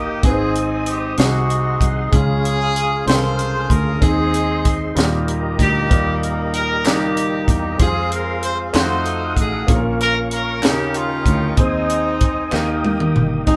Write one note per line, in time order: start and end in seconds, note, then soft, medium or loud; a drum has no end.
0.00 0.21 G1 medium
0.00 0.26 D#3 medium
0.00 0.20 A#3 medium
0.00 0.26 A#3 medium
0.00 0.21 D#4 medium
0.00 0.23 D#4 medium
0.00 0.26 F#4 soft
0.00 0.23 G4 medium
0.00 0.26 G4 medium
0.00 0.23 A#4 medium
0.00 0.26 A#4 medium
0.00 2.10 D#5 medium
0.00 0.23 G5 medium
0.00 0.23 D#6 medium
0.22 1.14 G#1 medium
0.22 1.14 G#2 medium
0.22 0.90 C4 medium
0.22 1.15 C4 medium
0.22 0.91 D#4 medium
0.22 1.15 D#4 medium
0.22 0.91 G#4 medium
0.22 0.56 G#4 medium
0.22 0.31 B4 medium
0.22 1.18 C5 medium
0.22 1.17 D#6 medium
0.22 kick loud
0.22 closed hi-hat medium
0.32 0.95 C5 medium
0.56 0.86 G#4 medium
0.56 closed hi-hat medium
0.86 1.19 G4 medium
0.86 closed hi-hat medium
1.18 1.77 C2 medium
1.18 2.09 C3 medium
1.18 1.85 C4 medium
1.18 1.85 D#4 medium
1.18 2.10 D#4 medium
1.18 1.86 F#4 medium
1.18 3.99 G#4 medium
1.18 1.87 G#4 medium
1.18 2.12 F#5 medium
1.18 2.12 C6 medium
1.18 snare loud
1.18 closed hi-hat medium
1.50 closed hi-hat medium
1.81 2.10 C2 medium
1.81 kick medium
1.81 closed hi-hat medium
2.12 3.03 C#2 medium
2.12 3.04 C#3 medium
2.12 2.80 G#3 medium
2.12 2.80 C#4 medium
2.12 4.00 C#4 medium
2.12 3.04 C#4 medium
2.12 2.80 F4 medium
2.12 3.04 F4 medium
2.12 3.03 G#4 loud
2.12 2.81 G#4 medium
2.12 4.00 F5 medium
2.12 kick loud
2.12 closed hi-hat medium
2.45 closed hi-hat medium
2.76 closed hi-hat medium
3.05 3.66 C2 medium
3.05 3.74 G#3 medium
3.05 3.74 C#4 medium
3.05 3.75 F4 medium
3.05 3.98 F4 medium
3.05 3.98 G#4 medium
3.05 3.14 A4 medium
3.05 3.71 C5 loud
3.05 closed hi-hat medium
3.10 snare loud
3.15 3.78 A#4 medium
3.39 closed hi-hat medium
3.70 3.99 D2 medium
3.70 4.02 A#4 medium
3.70 kick medium
3.70 closed hi-hat medium
4.00 4.93 D#2 loud
4.00 4.93 D#3 soft
4.00 4.68 G#3 medium
4.00 4.69 C4 medium
4.00 4.93 C4 medium
4.00 4.69 D#4 medium
4.00 4.93 D#4 medium
4.00 4.95 G#4 medium
4.00 4.73 G#4 medium
4.00 4.70 G#4 medium
4.00 4.95 C5 medium
4.00 7.76 D#5 medium
4.00 4.95 C6 medium
4.00 kick loud
4.00 closed hi-hat medium
4.34 closed hi-hat medium
4.65 kick medium
4.65 closed hi-hat medium
4.95 5.55 D#2 medium
4.95 5.87 A#2 medium
4.95 5.63 G3 medium
4.95 5.63 A#3 medium
4.95 5.64 D#4 medium
4.95 5.04 F#4 medium
4.95 7.77 G4 medium
4.95 7.76 A#4 medium
4.95 7.77 A#5 medium
4.95 snare loud
4.95 closed hi-hat medium
5.05 5.68 G4 medium
5.28 closed hi-hat medium
5.59 5.88 D2 medium
5.59 6.51 A#3 medium
5.59 6.51 D#4 medium
5.59 6.19 G4 medium
5.59 kick medium
5.59 closed hi-hat medium
5.89 6.85 D#2 medium
5.89 6.57 G3 medium
5.89 6.58 A#3 medium
5.89 6.58 D#4 medium
5.89 6.59 A#4 medium
5.89 kick loud
5.89 closed hi-hat medium
6.23 6.53 A#4 medium
6.23 closed hi-hat medium
6.54 6.84 A#4 medium
6.54 closed hi-hat medium
6.85 7.44 C#2 medium
6.85 7.76 D#3 medium
6.85 7.52 G3 medium
6.85 7.52 A#3 medium
6.85 7.76 A#3 medium
6.85 7.53 D#4 medium
6.85 7.77 D#4 medium
6.85 7.48 G4 medium
6.85 7.53 A#4 medium
6.85 snare loud
6.85 clap loud
6.85 closed hi-hat medium
7.17 closed hi-hat medium
7.48 7.77 E2 medium
7.48 7.78 G4 medium
7.48 kick medium
7.48 closed hi-hat medium
7.78 8.70 F2 medium
7.78 8.46 G#3 medium
7.78 8.46 C4 medium
7.78 8.71 C4 medium
7.78 8.47 F4 medium
7.78 8.71 F4 medium
7.78 7.87 G4 medium
7.78 8.73 G#4 medium
7.78 8.12 G#4 loud
7.78 8.73 C5 medium
7.78 10.60 F5 medium
7.78 8.73 C6 medium
7.78 kick medium
7.78 closed hi-hat medium
7.87 8.50 G#4 medium
8.12 8.42 A#4 medium
8.12 closed hi-hat medium
8.43 8.58 C5 loud
8.43 closed hi-hat medium
8.73 9.33 F2 medium
8.73 9.41 A3 medium
8.73 9.68 A3 medium
8.73 9.65 D#4 medium
8.73 9.41 D#4 medium
8.73 9.42 F4 medium
8.73 9.42 F#4 medium
8.73 9.65 A4 medium
8.73 9.33 C5 medium
8.73 9.68 F#5 medium
8.73 9.68 D#6 medium
8.73 snare loud
8.73 clap loud
8.73 closed hi-hat medium
9.06 closed hi-hat medium
9.37 9.66 A1 medium
9.37 9.71 G#4 medium
9.37 kick medium
9.37 closed hi-hat medium
9.67 10.63 A#1 loud
9.67 10.59 A#2 medium
9.67 10.35 A#3 medium
9.67 10.35 C#4 medium
9.67 10.36 F4 medium
9.67 9.76 G#4 medium
9.67 11.56 A#4 medium
9.67 10.62 C#5 medium
9.67 10.61 C#6 medium
9.67 kick loud
9.67 closed hi-hat medium
9.76 10.39 A#4 medium
10.01 10.16 A#4 loud
10.01 closed hi-hat medium
10.31 10.62 A#4 medium
10.31 closed hi-hat medium
10.62 11.22 D#2 medium
10.62 11.54 C#3 medium
10.62 10.94 A#3 medium
10.62 11.30 C#4 medium
10.62 10.94 C#4 medium
10.62 11.30 D#4 medium
10.62 11.31 G4 medium
10.62 10.95 G4 medium
10.62 10.71 A4 medium
10.62 13.44 D#5 medium
10.62 11.57 G5 medium
10.62 11.56 C#6 medium
10.62 snare loud
10.62 clap loud
10.62 closed hi-hat medium
10.71 11.34 A#4 medium
10.94 11.54 A#3 medium
10.94 11.54 C#4 medium
10.94 11.58 F4 medium
10.94 closed hi-hat medium
11.26 11.55 D2 medium
11.26 kick medium
11.26 closed hi-hat medium
11.56 12.48 D#2 medium
11.56 12.48 D#3 medium
11.56 12.80 G#3 medium
11.56 12.24 C4 medium
11.56 12.80 C4 medium
11.56 12.25 D#4 medium
11.56 12.81 D#4 medium
11.56 12.25 G#4 medium
11.56 12.51 C5 medium
11.56 12.26 C5 medium
11.56 12.51 G#5 medium
11.56 13.45 D#6 medium
11.56 kick loud
11.56 closed hi-hat medium
11.90 closed hi-hat medium
12.21 kick medium
12.21 closed hi-hat medium
12.51 13.11 D#2 medium
12.51 13.43 D#3 medium
12.51 13.19 A#3 medium
12.51 13.19 D#4 medium
12.51 13.19 G4 medium
12.51 13.46 A#4 medium
12.51 13.20 A#4 medium
12.51 13.46 G5 medium
12.51 snare soft
12.51 clap medium
12.85 high tom medium
13.00 mid tom medium
13.16 13.45 G1 medium
13.16 mid tom medium
13.45 13.56 G#1 medium
13.45 13.56 G#2 soft
13.45 13.56 G#3 medium
13.45 13.56 C4 medium
13.45 13.56 D#4 soft
13.45 13.56 D#4 medium
13.45 13.56 G4 soft
13.45 13.56 G#4 medium
13.45 13.56 D#5 soft
13.45 13.56 G5 soft
13.45 13.56 C6 medium
13.45 kick medium
13.45 closed hi-hat medium